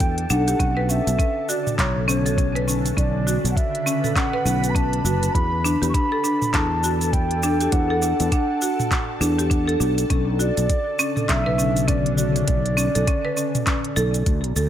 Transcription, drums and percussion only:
0.00 kick loud
0.00 closed hi-hat medium
0.00 shaker soft
0.18 closed hi-hat soft
0.30 shaker medium
0.48 closed hi-hat soft
0.48 shaker soft
0.60 kick loud
0.60 closed hi-hat medium
0.60 shaker soft
0.90 shaker medium
1.07 closed hi-hat soft
1.07 shaker soft
1.19 kick loud
1.19 closed hi-hat medium
1.19 shaker soft
1.49 shaker medium
1.67 mid tom medium
1.67 shaker soft
1.79 kick loud
1.79 clap medium
1.79 closed hi-hat medium
1.79 shaker soft
2.09 shaker medium
2.26 closed hi-hat soft
2.26 shaker medium
2.38 kick loud
2.38 closed hi-hat medium
2.38 shaker soft
2.56 closed hi-hat soft
2.68 shaker medium
2.86 closed hi-hat soft
2.86 shaker soft
2.97 kick loud
2.97 closed hi-hat medium
2.97 shaker soft
3.28 shaker medium
3.45 closed hi-hat soft
3.45 shaker soft
3.57 kick loud
3.57 closed hi-hat medium
3.57 shaker soft
3.75 closed hi-hat soft
3.87 shaker medium
4.04 mid tom medium
4.04 shaker soft
4.16 kick loud
4.16 clap medium
4.16 closed hi-hat medium
4.16 shaker soft
4.46 shaker medium
4.64 closed hi-hat soft
4.64 shaker soft
4.75 kick loud
4.75 closed hi-hat medium
4.75 shaker soft
4.93 closed hi-hat soft
5.06 shaker medium
5.23 closed hi-hat soft
5.23 shaker soft
5.35 kick loud
5.35 closed hi-hat medium
5.35 shaker soft
5.65 shaker medium
5.83 closed hi-hat soft
5.83 shaker soft
5.94 kick loud
5.94 closed hi-hat medium
5.94 shaker soft
6.25 shaker medium
6.42 mid tom medium
6.42 shaker soft
6.54 kick loud
6.54 clap medium
6.54 closed hi-hat medium
6.54 shaker soft
6.84 shaker medium
7.01 closed hi-hat soft
7.01 shaker soft
7.13 kick loud
7.13 closed hi-hat medium
7.13 shaker soft
7.31 closed hi-hat soft
7.43 shaker medium
7.61 closed hi-hat soft
7.61 shaker soft
7.72 kick loud
7.72 closed hi-hat medium
7.72 shaker soft
8.02 shaker medium
8.20 closed hi-hat soft
8.20 shaker soft
8.32 kick loud
8.32 closed hi-hat medium
8.32 shaker soft
8.62 shaker medium
8.80 mid tom medium
8.80 shaker soft
8.91 kick loud
8.91 clap medium
8.91 closed hi-hat medium
8.91 shaker soft
9.22 shaker medium
9.39 closed hi-hat soft
9.39 shaker soft
9.51 kick loud
9.51 closed hi-hat medium
9.51 shaker soft
9.69 closed hi-hat soft
9.81 shaker medium
9.98 closed hi-hat soft
9.98 shaker soft
10.10 kick loud
10.10 closed hi-hat medium
10.10 shaker soft
10.40 shaker medium
10.57 closed hi-hat soft
10.57 shaker soft
10.70 kick loud
10.70 closed hi-hat medium
10.70 shaker soft
10.99 shaker medium
11.17 mid tom medium
11.17 shaker soft
11.29 kick loud
11.29 clap medium
11.29 closed hi-hat medium
11.29 shaker soft
11.59 shaker medium
11.77 closed hi-hat soft
11.77 shaker soft
11.88 kick loud
11.88 closed hi-hat medium
11.88 shaker soft
12.06 closed hi-hat soft
12.18 shaker medium
12.36 closed hi-hat soft
12.36 shaker soft
12.48 kick loud
12.48 closed hi-hat medium
12.48 shaker soft
12.66 closed hi-hat soft
12.78 shaker medium
12.95 closed hi-hat soft
12.95 shaker soft
13.07 kick loud
13.07 closed hi-hat medium
13.07 shaker soft
13.37 shaker medium
13.55 closed hi-hat soft
13.55 mid tom medium
13.55 shaker soft
13.67 kick loud
13.67 clap medium
13.67 closed hi-hat medium
13.67 shaker soft
13.84 closed hi-hat soft
13.97 shaker medium
14.14 closed hi-hat soft
14.14 shaker soft
14.26 kick loud
14.26 closed hi-hat medium
14.26 shaker soft
14.44 closed hi-hat soft
14.56 shaker medium

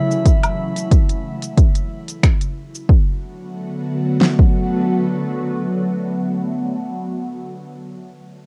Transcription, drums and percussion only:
0.11 shaker medium
0.26 kick medium
0.26 closed hi-hat medium
0.26 shaker medium
0.43 closed hi-hat soft
0.43 low woodblock medium
0.43 shaker soft
0.76 closed hi-hat soft
0.76 shaker medium
0.91 kick loud
0.91 closed hi-hat medium
0.91 shaker medium
1.09 closed hi-hat soft
1.09 shaker soft
1.42 closed hi-hat soft
1.42 shaker medium
1.57 kick loud
1.57 closed hi-hat medium
1.57 shaker soft
1.75 closed hi-hat soft
1.75 shaker soft
2.08 closed hi-hat soft
2.08 shaker medium
2.23 finger snap medium
2.23 kick loud
2.23 closed hi-hat medium
2.23 shaker medium
2.41 closed hi-hat soft
2.41 shaker soft
2.75 shaker medium
2.89 kick loud
4.21 snare medium
4.39 kick medium

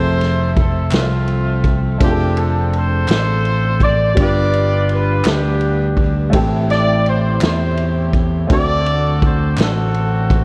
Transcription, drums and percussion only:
0.21 snare soft
0.21 ride medium
0.57 kick loud
0.57 ride soft
0.91 snare loud
0.91 clap medium
0.91 ride medium
1.28 ride soft
1.64 kick medium
1.64 ride soft
2.01 kick loud
2.01 ride medium
2.37 ride medium
2.73 ride soft
3.08 snare loud
3.08 clap medium
3.08 ride medium
3.45 ride soft
3.80 kick medium
3.80 ride soft
4.17 kick loud
4.17 ride medium
4.53 ride medium
4.89 ride soft
5.24 snare loud
5.24 clap loud
5.24 ride medium
5.61 ride soft
5.97 kick medium
5.97 ride soft
6.33 kick loud
6.33 ride loud
6.70 snare soft
6.70 ride medium
7.06 ride soft
7.41 snare loud
7.41 clap loud
7.41 ride medium
7.77 ride soft
8.13 kick medium
8.13 ride soft
8.50 kick loud
8.50 ride medium
8.86 ride medium
9.22 kick loud
9.22 ride soft
9.58 snare loud
9.58 clap loud
9.58 ride medium
9.94 ride soft
10.30 kick loud
10.30 ride soft

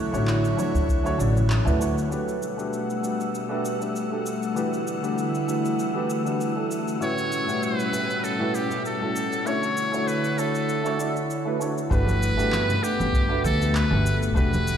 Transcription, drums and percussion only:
0.14 cabasa soft
0.27 clap loud
0.27 cabasa soft
0.45 cabasa soft
0.58 high conga medium
0.58 cabasa medium
0.75 cabasa soft
0.89 kick loud
0.89 cabasa soft
1.06 cabasa soft
1.20 cabasa medium
1.36 high conga medium
1.36 low conga medium
1.36 cabasa soft
1.50 clap loud
1.50 cabasa soft
1.65 low conga medium
1.65 cabasa soft
1.81 cabasa medium
1.98 cabasa soft
2.12 cabasa soft
2.28 cabasa soft
2.43 cabasa medium
2.59 cabasa soft
2.73 cabasa soft
2.90 cabasa soft
3.04 cabasa medium
3.21 cabasa soft
3.35 cabasa soft
3.65 cabasa medium
3.82 cabasa soft
3.96 cabasa soft
4.26 cabasa medium
4.43 cabasa soft
4.57 cabasa soft
4.73 cabasa soft
4.87 cabasa medium
5.04 cabasa soft
5.18 cabasa soft
5.35 cabasa soft
5.49 cabasa medium
5.65 cabasa soft
5.79 cabasa soft
6.10 cabasa medium
6.26 cabasa soft
6.41 cabasa soft
6.71 cabasa medium
6.88 cabasa soft
7.02 cabasa soft
7.18 cabasa soft
7.32 cabasa medium
7.49 cabasa soft
7.63 cabasa soft
7.80 cabasa soft
7.94 cabasa medium
8.10 cabasa soft
8.24 cabasa soft
8.55 cabasa medium
8.71 cabasa soft
8.86 cabasa soft
9.16 cabasa medium
9.33 cabasa soft
9.47 cabasa soft
9.63 cabasa soft
9.77 cabasa medium
9.94 cabasa soft
10.08 cabasa soft
10.24 cabasa soft
10.39 cabasa medium
10.55 cabasa soft
10.69 cabasa soft
10.86 cabasa soft
11.00 cabasa medium
11.16 cabasa soft
11.31 cabasa soft
11.61 cabasa medium
11.78 cabasa soft
11.91 kick loud
11.91 cabasa soft
12.06 high conga medium
12.06 cabasa soft
12.23 cabasa medium
12.39 cabasa soft
12.52 clap loud
12.52 high conga medium
12.52 cabasa soft
12.69 low conga medium
12.69 cabasa soft
12.84 cabasa medium
12.99 high conga loud
12.99 cabasa soft
13.13 kick loud
13.13 cabasa soft
13.44 kick medium
13.44 high conga medium
13.44 cabasa medium
13.62 cabasa soft
13.75 clap loud
13.75 cabasa soft
13.91 high conga medium
14.06 cabasa medium
14.23 cabasa soft
14.36 kick loud
14.36 cabasa soft
14.53 high conga medium
14.53 cabasa soft
14.68 cabasa medium

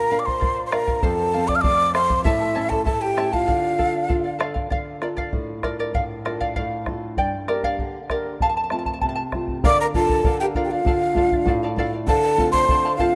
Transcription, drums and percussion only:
0.28 bombo low soft
0.42 bombo low medium
0.72 bombo rim medium
0.88 bombo low medium
1.03 bombo low medium
1.49 bombo low medium
1.64 bombo low medium
1.95 bombo rim medium
2.10 bombo low medium
2.25 bombo low medium
2.71 bombo low medium
2.86 bombo low medium
3.18 bombo rim soft
3.33 bombo low medium
3.48 bombo low medium
3.79 bombo low soft
4.10 bombo low medium
4.41 bombo rim medium
4.56 bombo low medium
4.71 bombo low medium
5.02 bombo rim medium
5.17 bombo low medium
5.33 bombo low medium
5.63 bombo rim medium
5.63 bombo low soft
5.95 bombo low medium
6.26 bombo rim medium
6.41 bombo low soft
6.56 bombo low medium
6.86 bombo rim soft
6.86 bombo low soft
7.17 bombo low medium
7.48 bombo rim soft
7.63 bombo low soft
7.79 bombo low medium
8.10 bombo rim medium
8.10 bombo low soft
8.40 bombo low medium
8.70 bombo rim soft
8.86 bombo low soft
9.02 bombo low medium
9.32 bombo rim soft
9.32 bombo low soft
9.48 bombo low soft
9.64 bombo low medium
9.94 bombo low medium
10.09 bombo low medium
10.24 bombo low medium
10.55 bombo low medium
10.86 bombo low medium
11.16 bombo low medium
11.32 bombo low medium
11.47 bombo low medium
11.77 bombo low medium
12.08 bombo low medium
12.39 bombo low medium
12.54 bombo low medium
12.69 bombo low medium
12.99 bombo low medium

